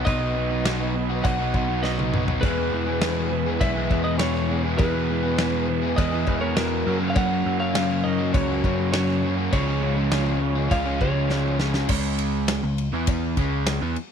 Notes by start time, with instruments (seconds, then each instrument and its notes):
0.05 picked electric bass B1, overdriven electric guitar B2 F#3 B3 D#4 F#4, string machine F#4 B4 D#5, lead electric guitar B4 D#5, kick, cowbell, crash
0.20 overdriven electric guitar F#3 B3 D#4
0.35 overdriven electric guitar B2 F#3 B3 D#4
0.50 overdriven electric guitar F#3 B3 D#4 F#4
0.65 overdriven electric guitar B2 F#3 B3 D#4 F#4, snare, cowbell, crash
0.80 overdriven electric guitar B3 D#4 F#4
0.94 overdriven electric guitar B2 F#3 B3 D#4, muted overdriven electric guitar stroke
1.10 overdriven electric guitar B3 D#4 F#4
1.24 picked electric bass B1, lead electric guitar D#5 F#5, kick, cowbell, crash
1.38 overdriven electric guitar F#3 B3 D#4 F#4
1.54 picked electric bass B1, overdriven electric guitar B2 F#3 B3 D#4 F#4, kick, cowbell
1.68 overdriven electric guitar F#3 B3 D#4
1.83 overdriven electric guitar B2 F#3 B3 D#4 F#4, lead electric guitar B4 D#5, snare, cowbell
1.98 overdriven electric guitar B3 D#4 F#4, high tom
2.13 overdriven electric guitar B2 F#3 B3 D#4 F#4, mid tom
2.28 overdriven electric guitar F#3 B3 D#4 F#4, floor tom
2.41 overdriven electric guitar E2 B2 E3 G#3 E4, picked electric bass E2, string machine E4 G#4 B4, lead electric guitar G#4 B4, kick, cowbell, crash
2.45 overdriven electric guitar B3 G#4
2.57 overdriven electric guitar G#3 B3 E4
2.72 picked electric bass E2, overdriven electric guitar E3 G#3 B3 E4
2.86 overdriven electric guitar E3 G#3 B3 E4 G#4
3.02 overdriven electric guitar E2 B2 E3 G#3 B3 E4 G#4, snare, cowbell, crash
3.16 overdriven electric guitar E3 G#3 B3 G#4
3.30 overdriven electric guitar E3 G#3 B3 E4, muted overdriven electric guitar stroke
3.46 overdriven electric guitar E3 G#3 B3 G#4
3.60 picked electric bass B1, overdriven electric guitar E2 B2 E3, lead electric guitar B4 E5, kick, cowbell, crash
3.75 overdriven electric guitar E3 G#3 B3 E4 G#4
3.90 picked electric bass E2, overdriven electric guitar E3 G#3 B3 E4 G#4, kick, cowbell
4.04 overdriven electric guitar G#3 B3 E4, lead electric guitar B4 D#5
4.19 overdriven electric guitar E2 B2 E3 G#3 B3 E4, lead electric guitar G#4 C#5, snare, cowbell, crash
4.23 overdriven electric guitar G#4
4.34 overdriven electric guitar E3 G#3 B3 G#4, snare
4.49 overdriven electric guitar E3 G#3 B3 E4 G#4
4.64 overdriven electric guitar E3 G#3 B3 E4 G#4
4.78 overdriven electric guitar E2 B2 E3 G#3 B3 E4, picked electric bass E2, string machine B3 E4 G#4, lead electric guitar G#4 B4, kick, cowbell, crash
4.82 overdriven electric guitar G#4
4.95 overdriven electric guitar G#3 B3 E4
5.10 overdriven electric guitar E3 G#3 B3 E4
5.23 overdriven electric guitar E3 G#3 B3 E4 G#4
5.38 overdriven electric guitar E2 B2 E3 G#3 B3 E4 G#4, snare, cowbell, crash
5.53 overdriven electric guitar E3 G#3 B3 G#4
5.69 overdriven electric guitar E3 G#3 B3 E4, muted overdriven electric guitar stroke
5.82 overdriven electric guitar E3 G#3 B3 G#4
5.96 overdriven electric guitar E2 B2, picked electric bass E2, lead electric guitar B4 D#5, kick, cowbell, crash
6.00 overdriven electric guitar E3
6.11 overdriven electric guitar E3 G#3 B3 E4 G#4
6.26 picked electric bass E2, overdriven electric guitar E3 G#3 B3 G#4, kick, cowbell
6.30 overdriven electric guitar E4
6.41 overdriven electric guitar G#3 B3 E4, lead electric guitar A#4 C#5
6.54 overdriven electric guitar E2 B2 E3 G#3 B3 E4, lead electric guitar F#4 A#4, snare, cowbell, crash
6.59 overdriven electric guitar G#4
6.70 overdriven electric guitar E3 G#3 B3 G#4
6.85 overdriven electric guitar F#2 C#3 F#3 A#3 C#4 F#4, picked electric bass F#2, string machine F#4 A#4 C#5
7.00 overdriven electric guitar F#3 A#3 C#4 F#4
7.08 lead electric guitar C#5 F5
7.14 overdriven electric guitar F#2 C#3 F#3 A#3 C#4 F#4, lead electric guitar C#5 F#5, kick, cowbell, crash
7.31 overdriven electric guitar F#3 A#3 C#4
7.45 picked electric bass F#2, overdriven electric guitar C#3 F#3 A#3 C#4
7.59 overdriven electric guitar F#3 A#3 C#4 F#4, lead electric guitar C#5 F5
7.74 overdriven electric guitar F#2 C#3 F#3 A#3 C#4 F#4, snare, cowbell, crash
7.89 overdriven electric guitar F#3 A#3 C#4 F#4
8.03 overdriven electric guitar F#2 C#3 F#3 A#3 C#4, lead electric guitar A#4 D#5, muted overdriven electric guitar stroke
8.18 overdriven electric guitar F#3 A#3 C#4 F#4
8.33 picked electric bass C#2, lead electric guitar F#4 C#5, kick, cowbell, crash
8.48 overdriven electric guitar F#3 A#3 C#4 F#4
8.63 picked electric bass F#2, overdriven electric guitar C#3 F#3 A#3 C#4 F#4, kick, cowbell
8.79 overdriven electric guitar F#3 A#3 C#4
8.92 overdriven electric guitar F#2 C#3 F#3 A#3 C#4 F#4, lead electric guitar F#4 C#5, snare, cowbell, crash
9.08 overdriven electric guitar F#3 A#3 C#4 F#4, snare
9.22 overdriven electric guitar C#3 F#3 A#3 C#4 F#4
9.37 overdriven electric guitar F#3 A#3 C#4 F#4
9.51 picked electric bass C#2, overdriven electric guitar C#3 F3 G#3 C#4 F4, string machine F4 G#4 C#5, lead electric guitar G#4 C#5, kick, cowbell, crash
9.67 overdriven electric guitar F3 G#3 C#4
9.81 overdriven electric guitar C#3 F3 G#3 C#4
9.96 overdriven electric guitar F3 G#3 C#4 F4
10.10 overdriven electric guitar C#3 F3 G#3 C#4 F4, snare, cowbell, crash
10.26 overdriven electric guitar G#3 C#4 F4
10.41 overdriven electric guitar C#3 F3 G#3 C#4, muted overdriven electric guitar stroke
10.56 overdriven electric guitar G#3 C#4 F4
10.70 picked electric bass C#2, overdriven electric guitar C#3 G#3 C#4, lead electric guitar C#5 F5, kick, cowbell, crash
10.85 overdriven electric guitar F3 G#3 C#4 F4
10.99 picked electric bass C#2, overdriven electric guitar C#3 F3 G#3 C#4 F4, lead electric guitar G#4 C#5, kick, cowbell
11.14 overdriven electric guitar F3 G#3 C#4
11.29 overdriven electric guitar C#3 F3 G#3 C#4 F4, snare, cowbell
11.44 overdriven electric guitar G#3 C#4 F4
11.59 overdriven electric guitar C#3 F3 G#3 C#4 F4, snare
11.73 overdriven electric guitar F3 G#3 C#4 F4, snare
11.89 picked electric bass C#2, overdriven electric guitar C#3 G#3 C#4, kick, crash, cowbell
12.18 ride
12.48 snare, ride, cowbell
12.63 picked electric bass C#2, overdriven electric guitar C#3 G#3
12.78 ride
12.93 picked electric bass E2, overdriven electric guitar E3 B3 E4
13.07 kick, ride, cowbell
13.37 picked electric bass C#2, overdriven electric guitar C#3 G#3 C#4, kick, ride
13.67 snare, ride, cowbell
13.82 picked electric bass E2, overdriven electric guitar E3 B3
13.96 ride